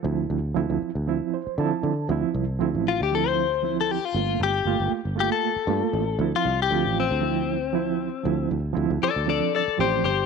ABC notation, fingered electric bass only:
X:1
M:4/4
L:1/16
Q:"Swing 16ths" 1/4=117
K:Dm
V:1 name="Fingered electric bass" clef=bass
D,,2 D,,2 D,, D,, z D,,2 z3 D, z D,2 | D,, z C,,2 D,, A,,,2 D,,8 z | G,,,2 G,,,2 G,,, G,,, z G,,,2 z3 G,, z A,,,2 | D,, z C,,2 D,, A,,,2 D,,8 z |
D,,2 D,,2 D,, D,, z D,,2 z3 A,,,2 G,,,2 |]